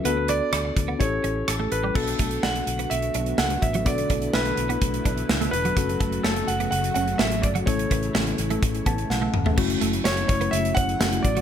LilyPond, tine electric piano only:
\new Staff \with { instrumentName = "Tine electric piano" } { \time 4/4 \key b \minor \tempo 4 = 126 << { r1 | r1 | r1 | r1 |
r2 r8 a''8 fis''4 | r1 | } \\ { <b d' fis' a'>2 <cis' e' g' a'>2 | <b d' fis' a'>1 | <b d' fis' a'>1 | <a cis' fis' a'>1 |
<a cis' e' a'>1 | <a cis' e' fis'>2. <a cis' e' fis'>4 | } >> }